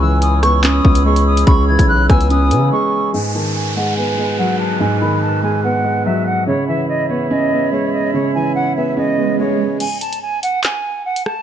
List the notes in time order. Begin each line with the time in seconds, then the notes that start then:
Already playing: C#2 C#3 C#5 G#5 B5 E6
0.01 E3 E6
0.22 D#6, closed hi-hat
0.43 B3 C#6, cross-stick, closed hi-hat
0.64 C#4 D#6, clap, closed hi-hat
0.85 C#2 B3, kick
0.95 closed hi-hat
1.05 G#3 C#6
1.16 closed hi-hat
1.27 D#6
1.37 closed hi-hat
1.47 C#2 C#3 B5 C#6, kick, closed hi-hat
1.68 E3 G#6
1.79 B1, kick, closed hi-hat
1.89 F#6
2.10 C#2 B3 G#5 E6, kick, cross-stick, closed hi-hat
2.21 closed hi-hat
2.30 C#4 D#6, closed hi-hat
2.51 C#3 B3, closed hi-hat
2.72 G#3 C#6
3.14 G#2 B4 G#5 F#6, downlifter
3.35 D#3 A5
3.55 G#5
3.76 G#3 F#5
3.97 B3 G#5
4.18 G#3
4.39 F#3 F#5
4.59 A5
4.80 G#2 G#5
5.01 D#3 B5
5.22 A5
5.43 G#3 G#5
5.64 B3 F#5
5.84 G#3
6.06 F#3 E5
6.26 F#5
6.47 C#3 C#5 E5 B5, swell
6.68 E3 E5
6.89 D#5
7.09 B3 C#5
7.30 C#4 D#5
7.51 B3
7.72 G#3 C#5
7.93 D#5
8.14 C#3 C#5
8.35 E3 G#5
8.55 F#5
8.76 B3 E5
8.97 C#4 D#5
9.18 B3
9.39 G#3 C#5
9.80 G#5, closed hi-hat, crash
10.01 A5, closed hi-hat
10.13 closed hi-hat
10.22 G#5
10.43 F#5, closed hi-hat
10.64 G#5, clap, closed hi-hat
11.05 F#5
11.16 closed hi-hat
11.26 A5, cross-stick